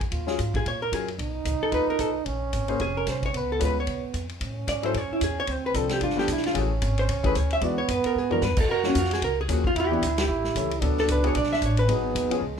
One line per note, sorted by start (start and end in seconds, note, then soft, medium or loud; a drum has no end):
0.00 0.11 E2 medium
0.00 kick soft
0.00 ride soft
0.12 0.38 D#2 medium
0.12 0.88 F4 medium
0.12 kick soft
0.12 ride medium
0.27 0.37 F#3 medium
0.27 0.37 C#4 medium
0.27 0.37 F4 medium
0.27 0.38 G#4 medium
0.27 snare soft
0.39 0.65 G#2 medium
0.39 kick soft
0.39 hi-hat pedal soft
0.39 ride soft
0.54 0.66 G#4 medium
0.54 kick medium
0.54 ride soft
0.66 0.92 A#2 medium
0.66 0.82 C#5 medium
0.66 kick soft
0.66 ride medium
0.82 0.93 A#4 medium
0.92 1.18 F#2 medium
0.92 1.06 F#3 medium
0.92 1.06 C#4 soft
0.92 1.06 F4 soft
0.92 1.08 G#4 medium
0.92 1.07 A#4 medium
0.92 kick soft
0.92 hi-hat pedal soft
0.92 ride medium
1.08 ride soft
1.18 1.45 B1 medium
1.18 2.27 D#4 loud
1.18 kick soft
1.18 ride soft
1.45 1.59 C#2 medium
1.45 kick soft
1.45 hi-hat pedal medium
1.45 ride medium
1.63 1.73 A4 medium
1.71 1.86 D#2 medium
1.71 2.11 A3 medium
1.71 2.12 D#4 medium
1.71 2.12 F4 soft
1.71 2.12 B4 medium
1.71 1.89 B4 medium
1.71 kick soft
1.71 ride soft
1.87 2.00 A#4 medium
1.87 muted upright bass stroke soft
1.99 2.25 B1 medium
1.99 2.09 A4 medium
1.99 kick soft
1.99 hi-hat pedal soft
1.99 ride medium
2.26 2.52 A#1 medium
2.26 3.36 C#4 medium
2.26 kick soft
2.26 ride soft
2.53 2.79 G#1 medium
2.53 kick soft
2.53 hi-hat pedal soft
2.53 ride medium
2.68 2.79 A#3 medium
2.68 2.79 C#4 medium
2.68 2.79 G#4 medium
2.68 2.79 C5 medium
2.68 ride soft
2.80 3.06 F1 medium
2.80 2.96 G#4 medium
2.80 kick soft
2.80 ride soft
2.97 3.07 A#4 medium
3.07 3.33 C2 medium
3.07 3.24 C5 medium
3.07 kick soft
3.07 snare soft
3.07 hi-hat pedal soft
3.07 ride medium
3.23 3.37 C#5 medium
3.23 kick soft
3.23 ride soft
3.34 3.60 C#2 medium
3.34 4.30 B3 medium
3.34 3.50 B4 medium
3.34 kick soft
3.34 ride soft
3.52 3.62 A4 medium
3.59 3.87 D2 medium
3.59 3.74 G#3 medium
3.59 3.74 C#4 medium
3.59 3.74 F4 medium
3.59 3.74 B4 medium
3.59 kick soft
3.59 hi-hat pedal medium
3.59 ride medium
3.65 3.78 B4 medium
3.80 4.03 C#5 medium
3.87 4.02 C#2 medium
3.87 kick soft
3.87 ride soft
4.03 muted upright bass stroke soft
4.14 4.40 F2 medium
4.14 kick soft
4.14 hi-hat pedal soft
4.14 ride soft
4.29 ride soft
4.41 4.67 A2 medium
4.41 5.49 C#4 medium
4.41 kick soft
4.41 ride medium
4.67 4.93 G#2 medium
4.67 4.83 D5 medium
4.67 kick soft
4.67 hi-hat pedal medium
4.67 ride medium
4.83 4.93 F#3 medium
4.83 4.93 C#4 medium
4.83 4.93 E4 medium
4.83 4.94 A4 medium
4.83 4.98 C5 medium
4.83 ride soft
4.94 5.09 F#2 medium
4.94 5.11 C#5 medium
4.94 kick soft
4.94 ride medium
5.10 5.22 E4 soft
5.10 muted upright bass stroke soft
5.21 5.47 E2 medium
5.21 5.38 G#4 medium
5.21 kick soft
5.21 hi-hat pedal medium
5.21 ride medium
5.40 5.51 C#5 loud
5.47 5.74 D2 medium
5.47 6.01 C4 medium
5.47 kick soft
5.47 ride medium
5.51 5.65 C5 medium
5.66 5.78 B4 medium
5.74 6.00 C2 medium
5.74 6.01 F3 medium
5.74 6.01 C4 medium
5.74 6.02 D4 medium
5.74 6.01 A4 medium
5.74 5.91 A4 medium
5.74 kick soft
5.74 hi-hat pedal medium
5.74 ride medium
5.89 6.02 G4 medium
5.89 snare medium
5.89 ride soft
6.01 6.27 G1 medium
6.01 6.58 D4 medium
6.01 6.17 F4 medium
6.01 kick soft
6.01 ride medium
6.10 snare soft
6.16 6.26 F3 medium
6.16 6.26 A3 medium
6.16 6.27 B3 medium
6.16 6.27 F4 medium
6.16 6.29 G4 loud
6.16 snare soft
6.28 6.54 B1 medium
6.28 kick soft
6.28 hi-hat pedal medium
6.28 ride medium
6.32 6.45 E4 medium
6.37 snare soft
6.44 6.58 F4 medium
6.44 snare soft
6.44 ride soft
6.53 6.81 A1 medium
6.53 6.68 E3 medium
6.53 6.68 A3 medium
6.53 6.68 C#4 medium
6.53 7.63 C#4 loud
6.53 6.68 G#4 medium
6.53 kick soft
6.53 ride medium
6.58 6.66 F#4 medium
6.82 7.08 G#1 medium
6.82 kick soft
6.82 hi-hat pedal soft
6.82 ride medium
6.98 7.11 C5 medium
6.98 ride soft
7.08 7.34 C#2 medium
7.08 7.24 C#5 medium
7.08 kick soft
7.08 ride medium
7.23 7.33 E3 medium
7.23 7.34 A3 medium
7.23 7.34 C#4 medium
7.23 7.34 G#4 medium
7.23 7.38 B4 medium
7.23 kick medium
7.23 ride soft
7.35 7.61 D2 medium
7.35 7.51 C#5 medium
7.35 kick soft
7.35 hi-hat pedal soft
7.35 ride medium
7.51 7.64 E5 loud
7.51 ride soft
7.61 7.87 E2 loud
7.61 7.75 E3 medium
7.61 7.75 G#3 medium
7.61 8.57 B3 loud
7.61 7.76 D4 medium
7.61 7.76 F#4 medium
7.61 7.78 D5 medium
7.61 kick soft
7.61 ride medium
7.78 7.88 C#5 medium
7.88 8.03 F#2 medium
7.88 8.05 B4 medium
7.88 kick soft
7.88 hi-hat pedal soft
7.88 ride medium
8.04 8.18 A#4 medium
8.04 muted upright bass stroke soft
8.04 ride soft
8.15 8.41 G#2 medium
8.15 8.32 G#4 medium
8.30 8.40 E3 medium
8.30 8.40 G#3 medium
8.30 8.41 D4 medium
8.30 8.41 F#4 medium
8.30 8.42 A#4 medium
8.30 floor tom medium
8.42 8.50 G2 medium
8.42 8.58 B4 medium
8.42 snare soft
8.42 hi-hat pedal soft
8.50 8.59 E2 medium
8.57 8.68 D2 medium
8.57 8.70 A4 medium
8.57 kick medium
8.57 crash medium
8.68 8.94 F#2 medium
8.68 9.44 F#4 loud
8.68 8.85 A#4 loud
8.68 kick soft
8.83 8.94 F3 medium
8.83 8.94 A#3 medium
8.83 8.94 C#4 medium
8.83 8.94 F#4 medium
8.83 snare soft
8.88 8.97 C#4 medium
8.95 9.21 F2 medium
8.95 9.12 F4 medium
8.95 kick soft
8.95 hi-hat pedal medium
8.95 ride medium
9.04 snare soft
9.11 9.23 G#4 medium
9.11 snare soft
9.11 ride soft
9.22 9.48 C#2 medium
9.22 9.38 A#4 medium
9.22 kick soft
9.22 ride medium
9.41 9.52 G#4 medium
9.48 9.74 D#2 medium
9.48 9.62 F3 medium
9.48 9.62 A#3 medium
9.48 9.63 C#4 soft
9.48 9.63 G#4 medium
9.48 kick soft
9.48 hi-hat pedal medium
9.48 ride medium
9.52 9.65 F#4 medium
9.64 9.76 F4 medium
9.64 kick medium
9.75 10.01 E2 medium
9.75 10.25 E4 loud
9.75 kick soft
9.75 ride medium
9.80 9.92 G4 loud
9.90 10.00 E3 medium
9.90 10.00 B3 medium
9.90 10.03 B3 medium
9.90 10.01 D4 medium
9.90 10.01 G4 medium
10.02 10.27 D2 medium
10.02 kick soft
10.02 hi-hat pedal medium
10.02 ride medium
10.06 10.19 D4 medium
10.18 10.79 G4 medium
10.18 snare medium
10.18 ride medium
10.28 10.54 A1 medium
10.28 10.82 E4 loud
10.44 snare soft
10.55 10.81 C#2 medium
10.55 10.69 E3 medium
10.55 10.69 A3 soft
10.55 10.70 C#4 medium
10.55 10.70 A4 medium
10.55 kick soft
10.55 hi-hat pedal medium
10.55 ride medium
10.71 ride soft
10.81 11.07 D2 loud
10.81 11.20 F#3 medium
10.81 11.21 B3 medium
10.81 11.91 D4 loud
10.81 11.21 D4 medium
10.81 11.21 A4 medium
10.81 kick soft
10.81 ride medium
10.97 11.09 A4 medium
10.97 snare soft
11.08 11.34 C#2 medium
11.08 11.25 B4 medium
11.08 kick soft
11.08 hi-hat pedal medium
11.08 ride medium
11.23 11.33 F#3 medium
11.23 11.34 B3 medium
11.23 11.34 D4 medium
11.23 11.34 G#4 medium
11.23 11.36 C#5 medium
11.23 ride soft
11.35 11.61 B1 medium
11.35 11.51 D5 medium
11.35 kick soft
11.35 ride medium
11.43 snare soft
11.53 11.62 E5 medium
11.53 snare soft
11.62 11.88 A1 medium
11.62 11.79 C#5 medium
11.62 kick soft
11.62 hi-hat pedal soft
11.62 ride medium
11.77 12.38 B4 loud
11.77 ride soft
11.88 12.14 G#1 medium
11.88 12.27 F#3 medium
11.88 12.28 B3 medium
11.88 12.43 B3 loud
11.88 12.28 D#4 medium
11.88 12.28 G#4 medium
11.88 kick soft
11.88 ride medium
12.15 12.29 D#2 medium
12.15 kick soft
12.15 hi-hat pedal soft
12.15 ride medium
12.30 12.40 F3 medium
12.30 12.40 B3 medium
12.30 12.41 C#4 medium
12.30 12.41 G#4 medium
12.30 muted upright bass stroke soft
12.30 ride medium
12.41 12.60 C#2 medium
12.41 12.60 G#3 medium